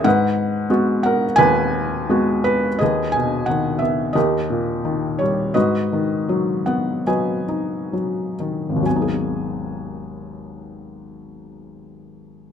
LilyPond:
<<
  \new Staff \with { instrumentName = "Felt piano" } { \time 4/4 \key gis \minor \tempo 4 = 82 << { fis''4 r8 fis''8 gis''4. b'8 | dis''8 gis''8 fis''8 e''8 dis''4. cis''8 | dis''4. fis''8 gis''4. r8 | gis''1 | } \\ { b'4 r8 ais'8 b'4. r8 | <gis' b'>2 <g' ais'>2 | <fis' b'>2 <b' dis''>2 | r1 | } >> }
  \new Staff \with { instrumentName = "Felt piano" } { \clef bass \time 4/4 \key gis \minor gis,4 <gis b fis'>4 dis,4 <gis b fis'>4 | dis,8 b,8 dis8 b8 dis,8 ais,8 dis8 g8 | gis,8 dis8 fis8 b8 fis8 dis'8 fis8 dis8 | <gis,, dis, fis b dis' gis'>1 | }
>>